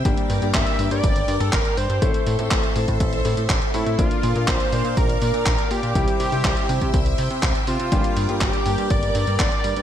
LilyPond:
<<
  \new Staff \with { instrumentName = "String machine" } { \time 4/4 \key g \dorian \tempo 4 = 122 << { <bes' d'' d'''>1 | <a' c'' c'''>1 | <bes' d'' d'''>1 | <c'' e'' e'''>1 |
<bes' d'' d'''>1 | } \\ { g''1 | e''1 | f''1 | g''1~ |
g''1 | } >> }
  \new Staff \with { instrumentName = "Analog synth lead" } { \time 4/4 \key g \dorian r4 e''8. d''4 a'16 bes'8 c''8~ | c''8 r2. e'8 | f'4 c''4 bes'8 bes'4 g'8~ | g'8 g'4. r4. f'8~ |
f'4 g'4 d''2 | }
  \new Staff \with { instrumentName = "Grand piano" } { \time 4/4 \key g \dorian <g bes d' g'>8. <g bes d' g'>8. <g bes d' g'>2~ <g bes d' g'>8 | <a c' e' a'>8. <a c' e' a'>8. <a c' e' a'>4 <a c' e' a'>16 r8. <a c' e' a'>8 | <bes d' f' bes'>8. <bes d' f' bes'>8. <bes d' f' bes'>2~ <bes d' f' bes'>8 | <g c' e' g'>8. <g c' e' g'>8. <g c' e' g'>2~ <g c' e' g'>8 |
<g bes d' g'>8. <g bes d' g'>8. <g bes d' g'>2~ <g bes d' g'>8 | }
  \new Staff \with { instrumentName = "Analog synth bass" } { \clef bass \time 4/4 \key g \dorian g,,16 r16 g,16 g,16 g,,16 r16 g,16 g,16 g,,8 g,16 g,16 g,,16 r16 g,16 g,16 | a,,16 r16 a,16 a,16 a,,16 r16 a,16 a,16 a,,8 a,16 a,16 a,,16 r16 a,16 a,16 | bes,,16 r16 bes,16 bes,16 bes,,16 r16 bes,16 bes,16 bes,,8 bes,16 bes,16 bes,,16 r16 bes,16 bes,16 | c,16 r16 c16 c16 c,16 r16 c16 c16 c,8 c16 c16 c,16 r16 c16 c16 |
g,,16 r16 g,16 g,16 g,,16 r16 g,16 g,16 g,,8 g,16 g,16 g,,16 r16 g,16 g,16 | }
  \new DrumStaff \with { instrumentName = "Drums" } \drummode { \time 4/4 <hh bd>16 hh16 hho16 hh16 <hc hh bd>16 hh16 hho16 hh16 <hh bd>16 hh16 hho16 hh16 <hc hh bd>16 hh16 hho16 hh16 | <hh bd>16 hh16 hho16 hh16 <hc hh bd>16 hh16 hho16 <hh bd>16 <hh bd>16 hh16 hho16 hh16 <hc hh bd>16 hh16 hho16 hh16 | <hh bd>16 hh16 hho16 hh16 <hc hh bd>16 hh16 hho16 hh16 <hh bd>16 hh16 hho16 hh16 <hc hh bd>16 hh16 hho16 hh16 | <hh bd>16 hh16 hho16 hh16 <hc hh bd>16 hh16 hho16 <hh bd>16 <hh bd>16 hh16 hho16 hh16 <hc hh bd>16 hh16 hho16 hh16 |
<hh bd>16 hh16 hho16 hh16 <hc hh bd>16 hh16 hho16 hh16 <hh bd>16 hh16 hho16 hh16 <hc hh bd>16 hh16 hho16 hh16 | }
>>